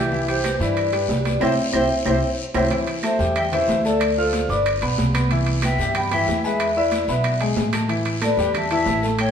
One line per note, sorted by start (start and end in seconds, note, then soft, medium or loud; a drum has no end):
0.00 0.54 C2 medium
0.00 0.26 G4 medium
0.00 0.27 B4 medium
0.12 0.39 E3 medium
0.12 0.39 E4 medium
0.12 0.39 E5 medium
0.12 high conga soft
0.12 long guiro medium
0.28 0.58 G4 medium
0.28 0.59 C5 medium
0.28 high conga soft
0.28 high timbale medium
0.44 0.58 G3 medium
0.44 0.58 G4 medium
0.44 0.58 B4 medium
0.44 high conga medium
0.44 high timbale medium
0.44 low timbale medium
0.44 short guiro medium
0.44 claves medium
0.60 1.05 G2 loud
0.60 0.87 E3 medium
0.60 0.87 E4 medium
0.60 1.38 B4 medium
0.60 1.39 D5 medium
0.60 0.87 E5 medium
0.60 high conga soft
0.60 short guiro medium
0.77 high conga soft
0.77 high timbale medium
0.77 long guiro medium
0.77 claves medium
0.92 1.19 G3 medium
0.92 1.19 G4 medium
0.92 1.20 B4 medium
0.92 high conga soft
0.92 high timbale medium
1.09 1.39 C2 medium
1.09 high conga medium
1.09 low timbale medium
1.09 short guiro medium
1.24 1.38 G3 medium
1.24 1.39 G4 medium
1.24 1.39 B4 medium
1.24 high conga medium
1.24 high timbale medium
1.24 short guiro medium
1.40 1.54 C2 medium
1.40 1.52 C4 loud
1.40 1.51 E4 medium
1.40 1.51 G4 medium
1.40 1.52 C5 loud
1.40 1.53 C5 medium
1.40 1.53 E5 medium
1.40 1.53 G5 medium
1.40 high conga medium
1.40 high timbale loud
1.40 long guiro loud
1.40 claves medium
1.73 1.86 C2 medium
1.73 1.84 C4 medium
1.73 1.84 E4 medium
1.73 1.84 G4 medium
1.73 1.84 C5 medium
1.73 1.85 C5 loud
1.73 1.85 E5 medium
1.73 1.85 G5 loud
1.73 high conga medium
1.73 high timbale medium
1.73 long guiro loud
1.73 claves loud
2.06 2.18 C2 medium
2.06 2.16 C4 medium
2.06 2.16 E4 medium
2.06 2.16 G4 medium
2.06 2.17 C5 medium
2.06 2.18 C5 medium
2.06 2.18 E5 medium
2.06 2.18 G5 medium
2.06 high conga medium
2.06 high timbale medium
2.06 long guiro medium
2.06 claves medium
2.54 2.67 C2 medium
2.54 2.65 C4 medium
2.54 2.65 E4 medium
2.54 2.66 G4 medium
2.54 2.66 C5 medium
2.54 2.66 E5 medium
2.54 2.66 G5 loud
2.54 high conga medium
2.54 high timbale loud
2.54 long guiro medium
2.54 claves medium
2.71 2.98 E3 medium
2.71 2.98 E4 medium
2.71 2.98 E5 medium
2.71 high conga soft
2.71 high timbale medium
2.71 long guiro medium
2.87 high timbale medium
3.03 3.17 A3 medium
3.03 3.17 A4 medium
3.03 3.34 C5 medium
3.03 3.37 E5 loud
3.03 3.17 A5 medium
3.03 high conga medium
3.03 high timbale medium
3.03 low timbale soft
3.03 short guiro medium
3.03 claves medium
3.19 3.65 E2 loud
3.19 3.46 G3 medium
3.19 3.46 G4 medium
3.19 3.46 G5 medium
3.19 high conga soft
3.19 short guiro medium
3.36 3.42 E5 loud
3.36 3.44 G5 loud
3.36 high conga soft
3.36 low conga medium
3.36 high timbale medium
3.36 long guiro medium
3.36 claves medium
3.52 3.79 E3 medium
3.52 3.79 E4 medium
3.52 3.82 C5 medium
3.52 3.86 E5 medium
3.52 3.79 E5 medium
3.52 high conga soft
3.52 low conga medium
3.52 high timbale medium
3.68 4.44 D2 medium
3.68 high conga medium
3.68 low timbale medium
3.68 short guiro medium
3.85 4.11 A3 medium
3.85 4.15 A4 medium
3.85 4.12 A4 medium
3.85 4.18 D5 medium
3.85 4.12 A5 medium
3.85 high conga soft
3.85 short guiro medium
4.00 high conga soft
4.00 high timbale loud
4.00 long guiro medium
4.00 claves medium
4.17 4.44 F4 medium
4.17 4.47 A4 medium
4.17 4.51 C5 medium
4.17 4.44 F5 medium
4.17 4.44 F6 medium
4.33 high conga loud
4.33 high timbale medium
4.33 low timbale soft
4.33 short guiro medium
4.49 4.79 G1 loud
4.49 4.76 D4 medium
4.49 4.79 B4 medium
4.49 4.76 D5 medium
4.49 4.80 D5 medium
4.49 4.76 D6 medium
4.49 high conga soft
4.49 short guiro medium
4.66 high conga soft
4.66 high timbale medium
4.66 long guiro medium
4.66 claves medium
4.82 4.97 B1 medium
4.82 5.09 B3 medium
4.82 5.09 B4 medium
4.82 5.09 B5 medium
4.82 high conga soft
4.82 high timbale medium
4.98 5.73 C2 medium
4.98 high conga medium
4.98 low timbale medium
4.98 short guiro medium
5.14 5.28 B3 medium
5.14 5.28 B4 medium
5.14 5.28 B5 medium
5.14 high conga medium
5.14 high timbale loud
5.14 short guiro medium
5.14 claves medium
5.31 5.58 E3 medium
5.31 5.58 E4 medium
5.31 5.58 E5 medium
5.31 high conga soft
5.31 high timbale medium
5.31 long guiro medium
5.46 high conga soft
5.46 high timbale medium
5.62 5.76 B3 medium
5.62 5.76 B4 medium
5.62 5.93 E5 medium
5.62 5.94 G5 loud
5.62 5.76 B5 medium
5.62 high conga loud
5.62 high timbale medium
5.62 low timbale medium
5.62 short guiro medium
5.62 claves medium
5.78 6.24 G2 loud
5.78 6.06 G3 medium
5.78 6.06 G4 medium
5.78 6.06 G5 medium
5.78 high conga soft
5.78 short guiro medium
5.95 6.11 G5 loud
5.95 6.11 B5 medium
5.95 high conga soft
5.95 low conga medium
5.95 high timbale medium
5.95 long guiro medium
5.95 claves medium
6.11 6.38 E3 medium
6.11 6.39 E4 medium
6.11 6.42 E5 medium
6.11 6.39 E5 medium
6.11 6.45 G5 medium
6.11 high conga soft
6.11 low conga medium
6.11 high timbale medium
6.27 7.03 E2 medium
6.27 high conga medium
6.27 low timbale medium
6.27 short guiro medium
6.43 6.70 G#3 medium
6.43 6.71 G#4 medium
6.43 6.74 B4 medium
6.43 6.74 E5 loud
6.43 6.71 G#5 medium
6.43 high conga soft
6.43 short guiro medium
6.60 high conga soft
6.60 high timbale medium
6.60 long guiro medium
6.60 claves medium
6.75 7.03 E4 medium
6.75 7.06 B4 medium
6.75 7.06 D5 medium
6.75 7.03 E5 medium
6.75 7.03 E6 medium
6.75 high conga soft
6.91 high conga loud
6.91 high timbale medium
6.91 low timbale soft
6.91 short guiro medium
7.08 7.53 B1 loud
7.08 7.35 B3 medium
7.08 7.35 B4 medium
7.08 7.39 B4 medium
7.08 7.39 E5 medium
7.08 7.35 B5 medium
7.08 high conga soft
7.08 short guiro medium
7.24 high conga soft
7.24 high timbale medium
7.24 long guiro medium
7.24 claves medium
7.41 7.67 G#3 medium
7.41 7.67 G#4 medium
7.41 7.68 G#5 medium
7.41 high conga soft
7.41 high timbale medium
7.56 8.32 A1 medium
7.56 high conga medium
7.56 low timbale medium
7.56 short guiro medium
7.73 7.86 A3 medium
7.73 7.87 A4 medium
7.73 7.87 A5 medium
7.73 high conga medium
7.73 high timbale loud
7.73 short guiro medium
7.73 claves medium
7.89 8.15 E3 medium
7.89 8.15 E4 medium
7.89 8.16 E5 medium
7.89 high conga soft
7.89 high timbale medium
7.89 long guiro medium
8.06 high conga soft
8.06 high timbale medium
8.21 8.35 A3 medium
8.21 8.35 A4 medium
8.21 8.53 B4 medium
8.21 8.53 D5 loud
8.21 8.35 A5 medium
8.21 high conga loud
8.21 high timbale medium
8.21 low timbale medium
8.21 short guiro medium
8.21 claves medium
8.37 8.82 E2 medium
8.37 8.64 G3 medium
8.37 8.65 G4 medium
8.37 8.65 G5 medium
8.37 high conga soft
8.37 short guiro medium
8.54 8.70 E5 medium
8.54 8.71 A5 loud
8.54 high conga soft
8.54 low conga medium
8.54 high timbale medium
8.54 long guiro medium
8.54 claves medium
8.70 8.97 E3 medium
8.70 8.97 E4 medium
8.70 9.01 E5 loud
8.70 8.98 E5 medium
8.70 9.01 A5 loud
8.70 high conga soft
8.70 high timbale medium
8.86 9.31 A1 loud
8.86 high conga medium
8.86 low timbale medium
8.86 short guiro medium
9.03 9.29 A3 medium
9.03 9.29 A4 medium
9.03 9.30 A5 medium
9.03 high conga soft
9.03 short guiro medium
9.19 9.31 C#5 medium
9.19 9.31 G5 loud
9.19 high conga soft
9.19 high timbale loud
9.19 long guiro medium
9.19 claves medium